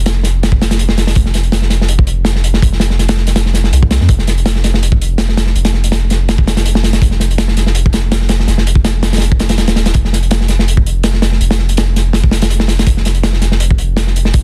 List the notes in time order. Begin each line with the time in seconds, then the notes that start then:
Already playing: F1
0.06 snare, closed hi-hat
0.23 snare, closed hi-hat
0.43 snare, closed hi-hat
0.52 kick
0.62 snare, closed hi-hat
0.71 snare, closed hi-hat
0.79 closed hi-hat
0.89 snare
0.98 snare, closed hi-hat
1.07 snare, closed hi-hat
1.15 F1, kick, closed hi-hat
1.26 snare
1.34 snare, closed hi-hat
1.43 closed hi-hat
1.52 snare, closed hi-hat
1.62 snare
1.70 snare, closed hi-hat
1.81 snare
1.88 closed hi-hat
1.99 kick
2.07 closed hi-hat
2.25 snare, closed hi-hat
2.36 snare
2.44 closed hi-hat
2.54 snare
2.62 F1, kick, closed hi-hat
2.72 snare
2.80 snare, closed hi-hat
2.90 snare
2.99 snare, closed hi-hat
3.09 snare, closed hi-hat
3.17 snare
3.27 snare, closed hi-hat
3.36 snare, closed hi-hat
3.46 snare
3.54 snare, closed hi-hat
3.64 snare
3.72 C2, closed hi-hat
3.83 kick
3.91 snare, closed hi-hat
4.01 F2, snare
4.09 F1, kick, closed hi-hat
4.19 snare
4.27 snare, closed hi-hat
4.38 closed hi-hat
4.46 snare, closed hi-hat
4.56 snare
4.64 snare, closed hi-hat
4.74 snare
4.83 closed hi-hat
4.92 kick
5.02 closed hi-hat
5.18 snare, closed hi-hat
5.29 snare
5.37 snare, closed hi-hat
5.47 snare
5.55 F1, closed hi-hat
5.65 snare, closed hi-hat
5.74 snare
5.84 closed hi-hat
5.92 snare, closed hi-hat
6.10 snare, closed hi-hat
6.29 snare, closed hi-hat
6.38 kick
6.47 snare, closed hi-hat
6.57 snare, closed hi-hat
6.66 closed hi-hat
6.75 snare
6.84 snare, closed hi-hat
6.93 snare, closed hi-hat
7.02 F1, kick, closed hi-hat
7.11 snare
7.20 snare, closed hi-hat
7.31 closed hi-hat
7.38 snare, closed hi-hat
7.48 snare
7.57 snare, closed hi-hat
7.67 snare
7.75 closed hi-hat
7.86 kick
7.93 snare, closed hi-hat
8.12 snare, closed hi-hat
8.22 snare
8.29 snare, closed hi-hat
8.40 snare
8.48 F1, snare, closed hi-hat
8.58 snare
8.67 closed hi-hat
8.75 kick
8.85 snare, closed hi-hat
9.03 snare, closed hi-hat
9.13 snare, closed hi-hat
9.17 snare, closed hi-hat
9.22 closed hi-hat
9.32 kick
9.39 snare, closed hi-hat
9.49 snare, closed hi-hat
9.58 D#1, snare, closed hi-hat
9.68 snare, closed hi-hat
9.76 snare, closed hi-hat
9.86 snare, closed hi-hat
9.94 F1, kick, closed hi-hat
10.05 snare
10.13 snare, closed hi-hat
10.23 closed hi-hat
10.31 snare, closed hi-hat
10.41 snare
10.48 snare, closed hi-hat
10.59 snare
10.68 closed hi-hat
10.77 kick
10.86 closed hi-hat
11.03 snare, closed hi-hat
11.13 snare
11.22 snare, closed hi-hat
11.32 snare
11.41 F1, closed hi-hat
11.51 snare, closed hi-hat
11.59 snare
11.69 closed hi-hat
11.77 snare, closed hi-hat
11.96 snare, closed hi-hat
12.13 snare, closed hi-hat
12.24 kick
12.31 snare, closed hi-hat
12.42 snare, closed hi-hat
12.50 closed hi-hat
12.60 snare
12.68 snare, closed hi-hat
12.79 snare, closed hi-hat
12.87 F1, kick, closed hi-hat
12.97 snare
13.05 snare, closed hi-hat
13.15 closed hi-hat
13.23 snare, closed hi-hat
13.33 snare
13.42 snare, closed hi-hat
13.52 snare
13.60 closed hi-hat
13.71 kick
13.78 closed hi-hat
13.97 snare, closed hi-hat
14.07 snare
14.16 closed hi-hat
14.25 snare
14.34 F1, kick, closed hi-hat